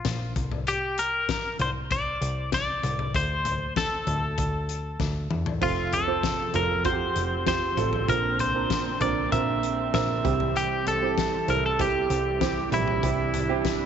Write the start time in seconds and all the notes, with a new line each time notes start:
Already playing: F4
0.05 A#1, kick, snare, closed hi-hat
0.36 C2, kick, closed hi-hat, floor tom
0.52 floor tom
0.67 G4, closed hi-hat
0.98 A#4, closed hi-hat
1.29 kick, snare, closed hi-hat
1.59 C2 C5, closed hi-hat, floor tom
1.91 D5, kick, closed hi-hat
2.21 C2, closed hi-hat
2.52 D5, kick, snare, closed hi-hat
2.83 C2, closed hi-hat, floor tom
2.99 floor tom
3.14 D2 C5, kick, closed hi-hat
3.45 closed hi-hat, floor tom
3.76 A4, kick, snare, closed hi-hat
4.07 D2, closed hi-hat, floor tom
4.38 D2, kick, closed hi-hat
4.69 closed hi-hat
5.00 D2, kick, snare
5.30 E2, mid tom
5.46 floor tom
5.61 F1 C3 F3 C4 F4 A4, kick, splash
5.93 A4, closed hi-hat, floor tom
6.07 C4 F4 C5
6.23 kick, snare, closed hi-hat
6.54 F1 C4 F4 A4 A#4, closed hi-hat, floor tom
6.85 C4 F4 F#4 C5, kick, closed hi-hat
6.92 G4
7.16 F1, closed hi-hat
7.46 C4 F4 G4 C5, kick, snare, closed hi-hat
7.77 A1 C4 F4 A4, closed hi-hat, floor tom
7.93 floor tom
8.08 A#1 A#2 D3 F3 A#3 C4 D4 A#4, kick, closed hi-hat
8.39 C5, closed hi-hat, floor tom
8.55 C4 D4 A#4
8.70 kick, snare, closed hi-hat
9.01 A#1 C4 D4 A#4 D5, closed hi-hat, floor tom
9.32 A#1 C4 D4 A#4 E5, kick, closed hi-hat
9.63 closed hi-hat
9.93 A#1 C4 D4 A#4 E5, kick, snare, closed hi-hat
10.24 C2 C3 E3 G3 C4 E4 G4, kick, closed hi-hat, floor tom
10.40 floor tom
10.56 G4, closed hi-hat
10.87 A4, closed hi-hat, floor tom
11.02 C4 E4 G4
11.18 kick, snare, closed hi-hat
11.48 C2 C4 E4 A4 A#4, closed hi-hat, floor tom
11.66 A4
11.79 C4 E4 G4, kick, closed hi-hat
12.10 C2, closed hi-hat
12.41 C4 E4 G4, kick, snare, closed hi-hat
12.72 A#1 C3 G3 C4 D4 E4 G4, closed hi-hat, floor tom
12.88 floor tom
13.03 C2 C4 E4 G4, kick, closed hi-hat
13.34 closed hi-hat, floor tom
13.49 C4 E4 G4
13.65 kick, snare, closed hi-hat